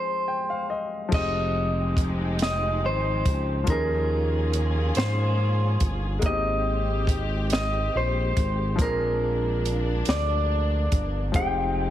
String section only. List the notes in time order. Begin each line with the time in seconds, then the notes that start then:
1.11 F3 G#3 C4 D#4 G4
3.67 D#3 A#3 C#4 F4 G#4
6.22 G#3 C4 G4
8.77 A#3 D4
11.34 F3 G#3 C4 D#4 G4